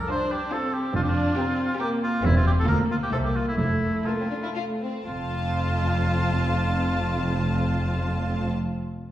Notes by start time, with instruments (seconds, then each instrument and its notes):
0.00 oboe A#4
0.08 viola section D4, violin section F4 C5 A5, oboe C5
0.31 oboe G4
0.51 viola section C4, violin section F4 C5 A5, oboe A4
0.73 oboe G4
0.93 double bass section F1, cello section F2, viola section D4, oboe F4
1.03 oboe G4
1.09 oboe F4
1.37 viola section C4, violin section G4 A#4 G5
1.79 viola section A#3, violin section G4 A#4 G5, oboe G4
2.03 oboe F4
2.22 double bass section E1, cello section E2, viola section C4, oboe E4, violin section G4 C5 E5
2.36 oboe F4
2.47 oboe G4
2.60 oboe A4
2.66 double bass section D2, cello section D2, viola section A#3, violin section F4 A#4 F5, oboe A#4
2.91 oboe F4
3.03 oboe G4
3.11 cello section C2, double bass section C2, violin section C4 C5 E5, oboe A4
3.24 oboe G4
3.36 oboe F4
3.48 oboe E4
3.57 double bass section F1, cello section F2, viola section A3, oboe E4
4.05 violin section A#3 A5, oboe F4
4.20 violin section C4
4.29 violin section D4
4.43 violin section E4
4.54 violin section F4 A5
4.81 violin section C4
5.04 double bass section F1, cello section F2, viola section C4, oboe F4, violin section F4 A5